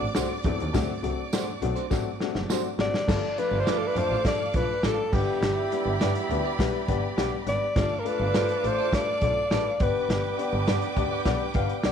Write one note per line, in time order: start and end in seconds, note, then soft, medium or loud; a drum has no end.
0.00 0.09 A1 medium
0.00 2.75 D5 loud
0.00 2.75 D6 loud
0.15 0.24 C2 medium
0.15 0.32 F#3 medium
0.15 0.32 A3 medium
0.15 0.32 C4 medium
0.15 0.27 D4 medium
0.15 0.32 D4 medium
0.15 0.32 F#4 loud
0.15 0.27 F#4 medium
0.15 0.28 C5 medium
0.15 snare loud
0.15 closed hi-hat medium
0.15 tambourine loud
0.44 0.53 E2 loud
0.44 0.61 F#3 loud
0.44 0.61 A3 medium
0.44 0.61 C4 medium
0.44 0.61 D4 medium
0.44 0.61 E4 loud
0.44 kick loud
0.44 snare soft
0.44 closed hi-hat medium
0.60 0.68 D#2 loud
0.60 closed hi-hat medium
0.74 0.83 D2 loud
0.74 0.90 F#3 loud
0.74 0.90 A3 loud
0.74 0.90 C4 loud
0.74 0.91 D4 loud
0.74 0.91 F#4 loud
0.74 kick loud
0.74 snare loud
0.74 closed hi-hat loud
0.74 tambourine medium
1.02 1.11 C2 loud
1.02 1.19 F#3 medium
1.02 1.19 A3 medium
1.02 1.19 C4 medium
1.02 1.20 D4 medium
1.02 1.20 F#4 medium
1.02 closed hi-hat medium
1.32 1.49 F#3 medium
1.32 1.49 A3 medium
1.32 1.49 C4 medium
1.32 1.44 D4 medium
1.32 1.49 D4 medium
1.32 1.49 F#4 medium
1.32 1.45 F#4 medium
1.32 1.45 C5 medium
1.32 snare loud
1.32 closed hi-hat loud
1.32 tambourine medium
1.62 1.70 B1 loud
1.62 1.78 F#3 medium
1.62 1.78 A3 medium
1.62 1.78 C4 medium
1.62 1.78 D4 medium
1.62 1.79 F#4 loud
1.62 closed hi-hat medium
1.76 1.86 D4 medium
1.76 1.86 F#4 medium
1.76 1.85 C5 medium
1.76 closed hi-hat medium
1.90 1.99 A1 loud
1.90 2.07 F#3 loud
1.90 2.07 A3 loud
1.90 2.07 C4 medium
1.90 2.07 D4 medium
1.90 2.07 F#4 loud
1.90 kick medium
1.90 snare medium
1.90 tambourine medium
2.20 2.37 F#3 medium
2.20 2.37 A3 medium
2.20 2.37 C4 medium
2.20 2.37 D4 medium
2.20 2.37 F#4 loud
2.20 snare medium
2.35 2.43 F#1 medium
2.35 snare medium
2.49 2.66 F#3 loud
2.49 2.66 A3 medium
2.49 2.66 C4 medium
2.49 2.61 D4 medium
2.49 2.66 D4 medium
2.49 2.62 F#4 medium
2.49 2.67 F#4 loud
2.49 2.62 C5 loud
2.49 snare loud
2.49 tambourine loud
2.79 2.87 G#1 medium
2.79 2.95 F#3 medium
2.79 2.95 A3 medium
2.79 2.95 C4 medium
2.79 2.95 D4 medium
2.79 2.95 F#4 loud
2.79 3.40 D5 loud
2.79 snare loud
2.94 snare loud
3.07 3.16 G1 loud
3.07 3.24 F3 loud
3.07 3.24 A3 medium
3.07 4.80 A3 medium
3.07 4.80 D4 medium
3.07 3.24 D4 loud
3.07 4.80 F4 loud
3.07 3.25 F4 medium
3.07 5.09 A4 medium
3.07 3.25 A4 loud
3.07 4.80 D5 medium
3.07 5.09 F5 loud
3.07 5.09 D6 loud
3.07 kick loud
3.07 snare loud
3.07 crash loud
3.38 3.54 F3 medium
3.38 3.54 A3 medium
3.38 3.54 D4 medium
3.38 3.54 F4 medium
3.38 3.54 B4 medium
3.38 3.61 B4 loud
3.38 closed hi-hat medium
3.52 3.60 G1 loud
3.60 3.71 C5 loud
3.66 3.83 F3 medium
3.66 3.83 A3 medium
3.66 3.83 D4 medium
3.66 3.78 F4 medium
3.66 3.83 F4 medium
3.66 3.79 A4 medium
3.66 3.84 A4 medium
3.66 3.80 B4 medium
3.66 3.79 D5 loud
3.66 snare loud
3.66 closed hi-hat loud
3.78 3.89 A4 medium
3.87 3.99 B4 medium
3.96 4.04 F2 loud
3.96 4.12 F3 medium
3.96 4.12 A3 medium
3.96 4.12 D4 medium
3.96 4.13 F4 medium
3.96 4.13 A4 medium
3.96 4.26 C5 loud
3.96 closed hi-hat medium
4.10 4.18 A1 medium
4.10 4.20 F4 soft
4.10 4.20 A4 medium
4.10 4.19 D5 medium
4.25 4.42 F3 medium
4.25 4.42 A3 medium
4.25 4.42 D4 medium
4.25 4.42 F4 medium
4.25 4.42 A4 loud
4.25 4.58 D5 loud
4.25 kick loud
4.25 snare loud
4.25 closed hi-hat medium
4.53 4.62 B1 medium
4.53 4.71 F3 medium
4.53 4.71 A3 medium
4.53 4.71 D4 medium
4.53 4.71 F4 medium
4.53 4.71 B4 medium
4.53 4.86 B4 loud
4.53 kick medium
4.53 closed hi-hat medium
4.83 4.91 A1 medium
4.83 5.00 F3 medium
4.83 5.00 A3 medium
4.83 5.00 D4 medium
4.83 4.95 F4 medium
4.83 5.01 F4 medium
4.83 4.96 A4 medium
4.83 5.15 A4 loud
4.83 5.01 A4 medium
4.83 4.96 D5 medium
4.83 snare loud
4.83 closed hi-hat medium
5.12 5.21 G1 loud
5.12 5.60 G3 medium
5.12 7.43 B3 medium
5.12 5.60 B3 medium
5.12 5.60 D4 medium
5.12 7.43 E4 medium
5.12 7.71 G4 loud
5.12 7.43 G4 medium
5.12 6.30 G4 medium
5.12 5.60 G4 medium
5.12 5.61 B4 medium
5.12 7.72 D5 loud
5.12 7.43 E5 loud
5.12 7.72 B5 loud
5.12 kick loud
5.12 snare soft
5.12 crash medium
5.42 5.50 G1 loud
5.42 snare loud
5.42 closed hi-hat loud
5.72 5.88 G3 medium
5.72 5.88 B3 medium
5.72 5.88 D4 medium
5.72 5.88 G4 medium
5.72 5.88 B4 medium
5.72 closed hi-hat medium
5.86 5.94 G1 loud
6.00 6.09 G2 loud
6.00 6.17 G3 medium
6.00 6.17 B3 medium
6.00 6.17 D4 medium
6.00 6.12 G4 medium
6.00 6.17 G4 medium
6.00 6.12 B4 medium
6.00 6.13 D5 loud
6.00 6.18 D5 medium
6.00 snare loud
6.00 closed hi-hat loud
6.15 closed hi-hat medium
6.30 6.38 D2 loud
6.30 6.47 G3 medium
6.30 6.47 B3 medium
6.30 6.47 D4 medium
6.30 6.47 G4 medium
6.30 6.47 B4 loud
6.30 closed hi-hat medium
6.45 6.54 G4 medium
6.45 6.54 B4 medium
6.45 6.54 D5 medium
6.59 6.67 B1 medium
6.59 6.75 G3 loud
6.59 6.75 B3 loud
6.59 6.75 D4 medium
6.59 6.76 G4 loud
6.59 6.76 B4 loud
6.59 kick medium
6.59 snare loud
6.59 closed hi-hat loud
6.88 6.97 G1 loud
6.88 7.05 G3 medium
6.88 7.05 B3 loud
6.88 7.05 D4 medium
6.88 7.05 G4 medium
6.88 7.05 B4 loud
6.88 kick medium
6.88 closed hi-hat medium
7.17 7.26 B1 medium
7.17 7.33 G3 loud
7.17 7.33 B3 medium
7.17 7.34 D4 medium
7.17 7.34 G4 medium
7.17 7.29 G4 medium
7.17 7.30 B4 medium
7.17 7.34 D5 loud
7.17 7.30 D5 medium
7.17 snare loud
7.17 closed hi-hat loud
7.46 7.55 G#1 medium
7.46 7.63 G3 medium
7.46 7.63 B3 medium
7.46 7.63 D4 medium
7.46 7.63 G4 medium
7.46 7.63 B4 medium
7.46 8.01 D5 loud
7.46 snare soft
7.46 closed hi-hat medium
7.76 7.84 G1 loud
7.76 7.92 A3 loud
7.76 9.48 A3 medium
7.76 7.92 D4 loud
7.76 9.48 D4 loud
7.76 7.92 F4 loud
7.76 9.48 F4 loud
7.76 9.76 A4 medium
7.76 7.92 A4 loud
7.76 7.92 D5 loud
7.76 9.48 D5 loud
7.76 9.76 F5 medium
7.76 9.76 D6 loud
7.76 kick loud
7.76 snare loud
7.76 closed hi-hat medium
8.00 8.09 A#4 medium
8.04 8.21 A3 medium
8.04 8.21 D4 medium
8.04 8.21 F4 medium
8.04 8.21 A4 medium
8.04 8.68 B4 loud
8.04 8.21 D5 medium
8.04 closed hi-hat medium
8.20 8.28 G1 loud
8.34 8.42 G2 loud
8.34 8.50 A3 medium
8.34 8.50 D4 medium
8.34 8.50 F4 medium
8.34 8.46 F4 medium
8.34 8.51 A4 medium
8.34 8.46 A4 medium
8.34 8.51 C5 medium
8.34 8.46 D5 loud
8.34 snare loud
8.34 closed hi-hat loud
8.49 closed hi-hat medium
8.63 8.72 A1 loud
8.63 8.79 A3 medium
8.63 8.80 D4 medium
8.63 8.79 F4 medium
8.63 8.80 A4 medium
8.63 8.94 C5 loud
8.63 8.80 D5 medium
8.63 closed hi-hat medium
8.79 8.88 F4 medium
8.79 8.88 A4 medium
8.79 8.87 D5 medium
8.92 9.09 A3 loud
8.92 9.09 D4 medium
8.92 9.09 F4 medium
8.92 9.09 A4 medium
8.92 9.09 B4 medium
8.92 9.83 D5 loud
8.92 kick medium
8.92 snare loud
8.92 closed hi-hat loud
9.21 9.30 B1 loud
9.21 9.38 A3 medium
9.21 9.38 D4 medium
9.21 9.39 F4 medium
9.21 9.39 A4 medium
9.21 9.39 D5 medium
9.21 kick loud
9.21 closed hi-hat medium
9.51 9.59 A1 medium
9.51 9.67 A3 medium
9.51 9.67 D4 medium
9.51 9.63 F4 medium
9.51 9.67 F4 medium
9.51 9.67 A4 medium
9.51 9.63 A4 loud
9.51 9.68 B4 medium
9.51 9.63 D5 loud
9.51 snare loud
9.51 closed hi-hat medium
9.80 9.88 G1 loud
9.80 11.92 B3 medium
9.80 10.27 B3 medium
9.80 11.92 D4 medium
9.80 10.27 D4 medium
9.80 11.92 G4 medium
9.80 10.27 G4 medium
9.80 11.92 B4 loud
9.80 10.27 B4 medium
9.80 10.69 B4 medium
9.80 11.92 D5 medium
9.80 10.27 D5 loud
9.80 11.92 G5 loud
9.80 11.92 D6 loud
9.80 kick loud
9.80 closed hi-hat medium
10.09 10.17 G1 loud
10.09 snare loud
10.09 closed hi-hat medium
10.38 10.55 B3 medium
10.38 10.55 D4 medium
10.38 10.55 G4 medium
10.38 10.55 B4 medium
10.38 10.55 D5 medium
10.38 closed hi-hat medium
10.53 10.61 G1 loud
10.67 10.76 G2 loud
10.67 10.84 B3 medium
10.67 10.84 D4 medium
10.67 10.79 G4 medium
10.67 10.84 G4 medium
10.67 10.79 B4 medium
10.67 10.84 B4 medium
10.67 10.84 D5 medium
10.67 10.80 D5 medium
10.67 snare loud
10.67 closed hi-hat loud
10.81 closed hi-hat medium
10.96 11.05 D2 medium
10.96 11.13 B3 medium
10.96 11.13 D4 medium
10.96 11.13 G4 medium
10.96 11.13 B4 medium
10.96 11.13 D5 loud
10.96 kick loud
10.96 closed hi-hat medium
11.11 11.21 G4 medium
11.11 11.21 B4 medium
11.11 11.20 D5 medium
11.25 11.34 B1 loud
11.25 11.42 B3 loud
11.25 11.42 D4 loud
11.25 11.42 G4 loud
11.25 11.42 B4 loud
11.25 11.42 D5 loud
11.25 kick medium
11.25 snare loud
11.25 closed hi-hat medium
11.54 11.63 G1 loud
11.54 11.71 B3 loud
11.54 11.71 D4 medium
11.54 11.71 G4 loud
11.54 11.71 B4 loud
11.54 11.71 F5 loud
11.54 kick loud
11.54 closed hi-hat medium
11.69 closed hi-hat medium
11.83 11.92 B1 medium
11.83 11.92 B3 medium
11.83 11.92 D4 medium
11.83 11.92 G4 medium
11.83 11.92 B4 medium
11.83 11.92 D5 loud
11.83 snare loud
11.83 closed hi-hat loud